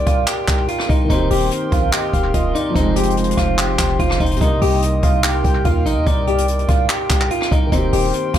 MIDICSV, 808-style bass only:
0, 0, Header, 1, 2, 480
1, 0, Start_track
1, 0, Key_signature, -3, "minor"
1, 0, Tempo, 413793
1, 1276, Time_signature, 4, 2, 24, 8
1, 9728, End_track
2, 0, Start_track
2, 0, Title_t, "808-style bass"
2, 0, Program_c, 0, 38
2, 77, Note_on_c, 0, 36, 107
2, 307, Note_off_c, 0, 36, 0
2, 556, Note_on_c, 0, 36, 103
2, 787, Note_off_c, 0, 36, 0
2, 1037, Note_on_c, 0, 36, 112
2, 1267, Note_off_c, 0, 36, 0
2, 1277, Note_on_c, 0, 27, 113
2, 1507, Note_off_c, 0, 27, 0
2, 1516, Note_on_c, 0, 27, 105
2, 1747, Note_off_c, 0, 27, 0
2, 1997, Note_on_c, 0, 34, 102
2, 2227, Note_off_c, 0, 34, 0
2, 2476, Note_on_c, 0, 27, 103
2, 2707, Note_off_c, 0, 27, 0
2, 2716, Note_on_c, 0, 27, 109
2, 2947, Note_off_c, 0, 27, 0
2, 3196, Note_on_c, 0, 29, 109
2, 3888, Note_off_c, 0, 29, 0
2, 3916, Note_on_c, 0, 29, 105
2, 4377, Note_off_c, 0, 29, 0
2, 4395, Note_on_c, 0, 29, 104
2, 4626, Note_off_c, 0, 29, 0
2, 4636, Note_on_c, 0, 29, 108
2, 4866, Note_off_c, 0, 29, 0
2, 4875, Note_on_c, 0, 29, 108
2, 5106, Note_off_c, 0, 29, 0
2, 5116, Note_on_c, 0, 36, 113
2, 5346, Note_off_c, 0, 36, 0
2, 5356, Note_on_c, 0, 36, 107
2, 5817, Note_off_c, 0, 36, 0
2, 5835, Note_on_c, 0, 36, 102
2, 6296, Note_off_c, 0, 36, 0
2, 6315, Note_on_c, 0, 36, 106
2, 6546, Note_off_c, 0, 36, 0
2, 6556, Note_on_c, 0, 39, 106
2, 6796, Note_on_c, 0, 34, 100
2, 6813, Note_off_c, 0, 39, 0
2, 6922, Note_on_c, 0, 39, 99
2, 6939, Note_off_c, 0, 34, 0
2, 7030, Note_off_c, 0, 39, 0
2, 7036, Note_on_c, 0, 36, 112
2, 7727, Note_off_c, 0, 36, 0
2, 7756, Note_on_c, 0, 36, 106
2, 7986, Note_off_c, 0, 36, 0
2, 8236, Note_on_c, 0, 36, 102
2, 8467, Note_off_c, 0, 36, 0
2, 8717, Note_on_c, 0, 36, 110
2, 8947, Note_off_c, 0, 36, 0
2, 8957, Note_on_c, 0, 27, 113
2, 9187, Note_off_c, 0, 27, 0
2, 9197, Note_on_c, 0, 27, 103
2, 9427, Note_off_c, 0, 27, 0
2, 9677, Note_on_c, 0, 34, 101
2, 9728, Note_off_c, 0, 34, 0
2, 9728, End_track
0, 0, End_of_file